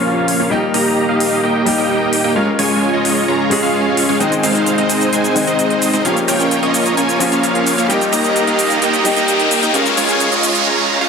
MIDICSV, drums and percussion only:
0, 0, Header, 1, 2, 480
1, 0, Start_track
1, 0, Tempo, 461538
1, 532, Time_signature, 4, 2, 24, 8
1, 11532, End_track
2, 0, Start_track
2, 0, Title_t, "Drums"
2, 293, Note_on_c, 9, 46, 106
2, 397, Note_off_c, 9, 46, 0
2, 772, Note_on_c, 9, 46, 113
2, 876, Note_off_c, 9, 46, 0
2, 1252, Note_on_c, 9, 46, 115
2, 1356, Note_off_c, 9, 46, 0
2, 1732, Note_on_c, 9, 46, 114
2, 1836, Note_off_c, 9, 46, 0
2, 2212, Note_on_c, 9, 46, 109
2, 2316, Note_off_c, 9, 46, 0
2, 2693, Note_on_c, 9, 46, 112
2, 2797, Note_off_c, 9, 46, 0
2, 3173, Note_on_c, 9, 46, 116
2, 3277, Note_off_c, 9, 46, 0
2, 3652, Note_on_c, 9, 46, 106
2, 3756, Note_off_c, 9, 46, 0
2, 4132, Note_on_c, 9, 46, 108
2, 4236, Note_off_c, 9, 46, 0
2, 4372, Note_on_c, 9, 42, 50
2, 4379, Note_on_c, 9, 69, 44
2, 4476, Note_off_c, 9, 42, 0
2, 4483, Note_off_c, 9, 69, 0
2, 4492, Note_on_c, 9, 42, 26
2, 4499, Note_on_c, 9, 69, 31
2, 4596, Note_off_c, 9, 42, 0
2, 4603, Note_off_c, 9, 69, 0
2, 4612, Note_on_c, 9, 46, 112
2, 4619, Note_on_c, 9, 69, 82
2, 4716, Note_off_c, 9, 46, 0
2, 4723, Note_off_c, 9, 69, 0
2, 4732, Note_on_c, 9, 42, 51
2, 4739, Note_on_c, 9, 69, 34
2, 4836, Note_off_c, 9, 42, 0
2, 4843, Note_off_c, 9, 69, 0
2, 4851, Note_on_c, 9, 42, 49
2, 4858, Note_on_c, 9, 69, 43
2, 4955, Note_off_c, 9, 42, 0
2, 4962, Note_off_c, 9, 69, 0
2, 4971, Note_on_c, 9, 42, 27
2, 5075, Note_off_c, 9, 42, 0
2, 5091, Note_on_c, 9, 46, 109
2, 5098, Note_on_c, 9, 69, 83
2, 5195, Note_off_c, 9, 46, 0
2, 5202, Note_off_c, 9, 69, 0
2, 5212, Note_on_c, 9, 42, 51
2, 5219, Note_on_c, 9, 69, 34
2, 5316, Note_off_c, 9, 42, 0
2, 5323, Note_off_c, 9, 69, 0
2, 5331, Note_on_c, 9, 42, 50
2, 5338, Note_on_c, 9, 69, 45
2, 5435, Note_off_c, 9, 42, 0
2, 5442, Note_off_c, 9, 69, 0
2, 5452, Note_on_c, 9, 42, 25
2, 5459, Note_on_c, 9, 69, 33
2, 5556, Note_off_c, 9, 42, 0
2, 5563, Note_off_c, 9, 69, 0
2, 5573, Note_on_c, 9, 46, 102
2, 5580, Note_on_c, 9, 69, 78
2, 5677, Note_off_c, 9, 46, 0
2, 5684, Note_off_c, 9, 69, 0
2, 5692, Note_on_c, 9, 42, 48
2, 5699, Note_on_c, 9, 69, 32
2, 5796, Note_off_c, 9, 42, 0
2, 5803, Note_off_c, 9, 69, 0
2, 5812, Note_on_c, 9, 42, 50
2, 5819, Note_on_c, 9, 69, 46
2, 5916, Note_off_c, 9, 42, 0
2, 5923, Note_off_c, 9, 69, 0
2, 5932, Note_on_c, 9, 42, 27
2, 6036, Note_off_c, 9, 42, 0
2, 6051, Note_on_c, 9, 46, 102
2, 6058, Note_on_c, 9, 69, 82
2, 6155, Note_off_c, 9, 46, 0
2, 6162, Note_off_c, 9, 69, 0
2, 6172, Note_on_c, 9, 42, 51
2, 6179, Note_on_c, 9, 69, 35
2, 6276, Note_off_c, 9, 42, 0
2, 6283, Note_off_c, 9, 69, 0
2, 6292, Note_on_c, 9, 42, 55
2, 6299, Note_on_c, 9, 69, 46
2, 6396, Note_off_c, 9, 42, 0
2, 6403, Note_off_c, 9, 69, 0
2, 6412, Note_on_c, 9, 42, 26
2, 6419, Note_on_c, 9, 69, 32
2, 6516, Note_off_c, 9, 42, 0
2, 6523, Note_off_c, 9, 69, 0
2, 6532, Note_on_c, 9, 46, 105
2, 6539, Note_on_c, 9, 69, 86
2, 6636, Note_off_c, 9, 46, 0
2, 6643, Note_off_c, 9, 69, 0
2, 6653, Note_on_c, 9, 42, 51
2, 6660, Note_on_c, 9, 69, 36
2, 6757, Note_off_c, 9, 42, 0
2, 6764, Note_off_c, 9, 69, 0
2, 6773, Note_on_c, 9, 42, 51
2, 6780, Note_on_c, 9, 69, 45
2, 6877, Note_off_c, 9, 42, 0
2, 6884, Note_off_c, 9, 69, 0
2, 6892, Note_on_c, 9, 42, 27
2, 6996, Note_off_c, 9, 42, 0
2, 7012, Note_on_c, 9, 46, 103
2, 7019, Note_on_c, 9, 69, 90
2, 7116, Note_off_c, 9, 46, 0
2, 7123, Note_off_c, 9, 69, 0
2, 7132, Note_on_c, 9, 42, 54
2, 7139, Note_on_c, 9, 69, 35
2, 7236, Note_off_c, 9, 42, 0
2, 7243, Note_off_c, 9, 69, 0
2, 7252, Note_on_c, 9, 42, 51
2, 7259, Note_on_c, 9, 69, 46
2, 7356, Note_off_c, 9, 42, 0
2, 7363, Note_off_c, 9, 69, 0
2, 7373, Note_on_c, 9, 42, 27
2, 7380, Note_on_c, 9, 69, 33
2, 7477, Note_off_c, 9, 42, 0
2, 7484, Note_off_c, 9, 69, 0
2, 7493, Note_on_c, 9, 46, 101
2, 7500, Note_on_c, 9, 69, 84
2, 7597, Note_off_c, 9, 46, 0
2, 7604, Note_off_c, 9, 69, 0
2, 7612, Note_on_c, 9, 42, 51
2, 7619, Note_on_c, 9, 69, 34
2, 7716, Note_off_c, 9, 42, 0
2, 7723, Note_off_c, 9, 69, 0
2, 7732, Note_on_c, 9, 42, 54
2, 7739, Note_on_c, 9, 69, 48
2, 7836, Note_off_c, 9, 42, 0
2, 7843, Note_off_c, 9, 69, 0
2, 7853, Note_on_c, 9, 42, 26
2, 7957, Note_off_c, 9, 42, 0
2, 7972, Note_on_c, 9, 46, 103
2, 7979, Note_on_c, 9, 69, 80
2, 8076, Note_off_c, 9, 46, 0
2, 8083, Note_off_c, 9, 69, 0
2, 8093, Note_on_c, 9, 42, 54
2, 8100, Note_on_c, 9, 69, 37
2, 8197, Note_off_c, 9, 42, 0
2, 8204, Note_off_c, 9, 69, 0
2, 8213, Note_on_c, 9, 42, 57
2, 8220, Note_on_c, 9, 69, 49
2, 8317, Note_off_c, 9, 42, 0
2, 8324, Note_off_c, 9, 69, 0
2, 8334, Note_on_c, 9, 42, 27
2, 8340, Note_on_c, 9, 69, 33
2, 8438, Note_off_c, 9, 42, 0
2, 8444, Note_off_c, 9, 69, 0
2, 8452, Note_on_c, 9, 46, 100
2, 8459, Note_on_c, 9, 69, 84
2, 8556, Note_off_c, 9, 46, 0
2, 8563, Note_off_c, 9, 69, 0
2, 8572, Note_on_c, 9, 42, 55
2, 8579, Note_on_c, 9, 69, 34
2, 8676, Note_off_c, 9, 42, 0
2, 8683, Note_off_c, 9, 69, 0
2, 8693, Note_on_c, 9, 42, 50
2, 8700, Note_on_c, 9, 69, 48
2, 8797, Note_off_c, 9, 42, 0
2, 8804, Note_off_c, 9, 69, 0
2, 8813, Note_on_c, 9, 42, 29
2, 8917, Note_off_c, 9, 42, 0
2, 8932, Note_on_c, 9, 46, 106
2, 8939, Note_on_c, 9, 69, 87
2, 9036, Note_off_c, 9, 46, 0
2, 9043, Note_off_c, 9, 69, 0
2, 9052, Note_on_c, 9, 42, 55
2, 9059, Note_on_c, 9, 69, 35
2, 9156, Note_off_c, 9, 42, 0
2, 9163, Note_off_c, 9, 69, 0
2, 9172, Note_on_c, 9, 42, 56
2, 9179, Note_on_c, 9, 69, 48
2, 9276, Note_off_c, 9, 42, 0
2, 9283, Note_off_c, 9, 69, 0
2, 9292, Note_on_c, 9, 42, 29
2, 9298, Note_on_c, 9, 69, 34
2, 9396, Note_off_c, 9, 42, 0
2, 9402, Note_off_c, 9, 69, 0
2, 9412, Note_on_c, 9, 46, 106
2, 9419, Note_on_c, 9, 69, 84
2, 9516, Note_off_c, 9, 46, 0
2, 9523, Note_off_c, 9, 69, 0
2, 9532, Note_on_c, 9, 42, 54
2, 9539, Note_on_c, 9, 69, 33
2, 9636, Note_off_c, 9, 42, 0
2, 9643, Note_off_c, 9, 69, 0
2, 9652, Note_on_c, 9, 42, 56
2, 9659, Note_on_c, 9, 69, 46
2, 9756, Note_off_c, 9, 42, 0
2, 9763, Note_off_c, 9, 69, 0
2, 9772, Note_on_c, 9, 42, 28
2, 9876, Note_off_c, 9, 42, 0
2, 9891, Note_on_c, 9, 46, 101
2, 9898, Note_on_c, 9, 69, 83
2, 9995, Note_off_c, 9, 46, 0
2, 10002, Note_off_c, 9, 69, 0
2, 10011, Note_on_c, 9, 42, 55
2, 10018, Note_on_c, 9, 69, 39
2, 10115, Note_off_c, 9, 42, 0
2, 10122, Note_off_c, 9, 69, 0
2, 10131, Note_on_c, 9, 42, 59
2, 10137, Note_on_c, 9, 69, 46
2, 10235, Note_off_c, 9, 42, 0
2, 10241, Note_off_c, 9, 69, 0
2, 10251, Note_on_c, 9, 42, 28
2, 10257, Note_on_c, 9, 69, 32
2, 10355, Note_off_c, 9, 42, 0
2, 10361, Note_off_c, 9, 69, 0
2, 10371, Note_on_c, 9, 46, 110
2, 10378, Note_on_c, 9, 69, 86
2, 10475, Note_off_c, 9, 46, 0
2, 10482, Note_off_c, 9, 69, 0
2, 10491, Note_on_c, 9, 42, 54
2, 10498, Note_on_c, 9, 69, 36
2, 10595, Note_off_c, 9, 42, 0
2, 10602, Note_off_c, 9, 69, 0
2, 10610, Note_on_c, 9, 42, 56
2, 10617, Note_on_c, 9, 69, 47
2, 10714, Note_off_c, 9, 42, 0
2, 10721, Note_off_c, 9, 69, 0
2, 10730, Note_on_c, 9, 42, 30
2, 10737, Note_on_c, 9, 69, 36
2, 10834, Note_off_c, 9, 42, 0
2, 10841, Note_off_c, 9, 69, 0
2, 10850, Note_on_c, 9, 46, 106
2, 10857, Note_on_c, 9, 69, 87
2, 10954, Note_off_c, 9, 46, 0
2, 10961, Note_off_c, 9, 69, 0
2, 10970, Note_on_c, 9, 42, 57
2, 10977, Note_on_c, 9, 69, 34
2, 11074, Note_off_c, 9, 42, 0
2, 11081, Note_off_c, 9, 69, 0
2, 11532, End_track
0, 0, End_of_file